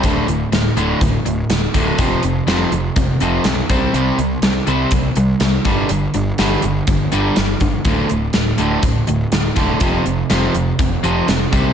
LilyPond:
<<
  \new Staff \with { instrumentName = "Overdriven electric guitar" } { \clef bass \time 4/4 \key d \minor \tempo 4 = 123 <d, a, d>8 <d, a,>8 <d, a,>8 <d, a, d>8 <d, a,>8 <d, a,>8 <d, a,>8 <d, a, d>8 | <f, c f>8 <f, c>8 <f, c f>8 <f, c>8 <f, c>8 <f, c f>8 <f, c>8 <c g c'>8 | <c g c'>8 <c g>8 <c g>8 <c g c'>8 <c g>8 <c g>8 <c g>8 <g, d g>8 | <g, d>8 <g, d>8 <g, d g>8 <g, d>8 <g, d>8 <g, d g>8 <g, d>8 <g, d>8 |
<d, a, d>8 <d, a,>8 <d, a,>8 <d, a, d>8 <d, a,>8 <d, a,>8 <d, a,>8 <d, a, d>8 | <f, c f>8 <f, c>8 <f, c f>8 <f, c>8 <f, c>8 <f, c f>8 <f, c>8 <c g c'>8 | }
  \new Staff \with { instrumentName = "Overdriven electric guitar" } { \clef bass \time 4/4 \key d \minor <d, a, d>8 <d, a,>8 <d, a,>8 <d, a, d>8 <d, a,>8 <d, a,>8 <d, a,>8 <d, a, d>8 | <f, c f>8 <f, c>8 <f, c f>8 <f, c>8 <f, c>8 <f, c f>8 <f, c>8 <c g c'>8 | <c g c'>8 <c g>8 <c g>8 <c g c'>8 <c g>8 <c g>8 <c g>8 <g, d g>8 | <g, d>8 <g, d>8 <g, d g>8 <g, d>8 <g, d>8 <g, d g>8 <g, d>8 <g, d>8 |
<d, a, d>8 <d, a,>8 <d, a,>8 <d, a, d>8 <d, a,>8 <d, a,>8 <d, a,>8 <d, a, d>8 | <f, c f>8 <f, c>8 <f, c f>8 <f, c>8 <f, c>8 <f, c f>8 <f, c>8 <c g c'>8 | }
  \new Staff \with { instrumentName = "Picked electric bass" } { \clef bass \time 4/4 \key d \minor d,,8 d,,8 d,,8 d,,8 d,,8 d,,8 d,,8 d,,8 | f,,8 f,,8 f,,8 f,,8 f,,8 f,,8 b,,8 c,8 | c,8 c,8 c,8 c,8 c,8 c,8 c,8 g,,8 | g,,8 g,,8 g,,8 g,,8 g,,8 g,,8 g,,8 g,,8 |
d,,8 d,,8 d,,8 d,,8 d,,8 d,,8 d,,8 e,,8 | f,,8 f,,8 f,,8 f,,8 f,,8 f,,8 f,,8 c,8 | }
  \new DrumStaff \with { instrumentName = "Drums" } \drummode { \time 4/4 <hh bd>8 hh8 <hh sn>8 hh8 <hh bd>8 hh8 <hh sn>8 <hh bd>8 | <hh bd>8 hh8 <hh sn>8 hh8 <hh bd>8 hh8 <hh sn>8 <hh bd>8 | hh8 hh8 <hh sn>8 hh8 <hh bd>8 hh8 <hh sn>8 <hh bd>8 | hh8 hh8 <hh sn>8 hh8 <hh bd>8 hh8 <hh sn>8 <hh bd>8 |
<hh bd>8 hh8 <hh sn>8 hh8 <hh bd>8 hh8 <hh sn>8 <hh bd>8 | <hh bd>8 hh8 <hh sn>8 hh8 <hh bd>8 hh8 <hh sn>8 <hh bd>8 | }
>>